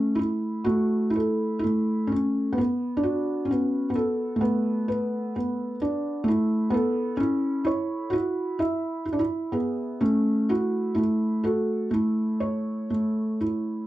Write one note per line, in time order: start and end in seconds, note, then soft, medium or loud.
0.00 0.65 A3 medium
0.00 0.20 C#4 medium
0.15 0.17 E4 medium
0.15 1.09 E4 medium
0.64 1.62 A3 medium
0.64 1.16 F#4 medium
1.10 1.58 E4 medium
1.15 2.58 A4 medium
1.59 2.10 E4 medium
1.64 2.58 A3 medium
2.07 2.11 C#4 medium
2.12 2.58 C#4 medium
2.52 2.56 B3 medium
2.58 3.49 B3 medium
2.97 3.48 D4 medium
3.03 4.88 F#4 medium
3.45 3.95 C#4 medium
3.51 3.88 B3 medium
3.90 4.39 B3 medium
3.95 5.81 A4 medium
4.36 5.74 A3 medium
4.41 5.34 B3 medium
4.88 6.27 B4 medium
5.36 6.28 B3 medium
5.82 6.28 D4 medium
6.24 6.73 A3 medium
6.28 7.19 E4 medium
6.70 7.15 B3 medium
6.70 8.14 A4 medium
7.17 7.67 C#4 medium
7.17 7.63 E4 medium
7.65 8.11 E4 medium
7.65 8.14 C#5 medium
8.10 8.58 E4 medium
8.10 8.60 F#4 medium
8.59 9.04 E4 medium
8.59 10.01 E5 medium
9.05 9.18 E4 medium
9.13 9.20 D4 medium
9.19 9.54 E4 medium
9.52 10.02 B3 medium
9.52 10.01 G#4 medium
10.01 10.94 A3 medium
10.01 10.50 C#4 medium
10.49 10.93 E4 medium
10.49 10.98 F#4 medium
10.95 11.89 A3 medium
10.95 11.44 E4 medium
11.44 11.88 F#4 medium
11.44 13.41 A4 medium
11.91 12.89 A3 medium
11.91 13.38 E4 medium
12.40 13.87 C#5 medium
12.90 13.87 A3 medium
13.41 13.87 E4 medium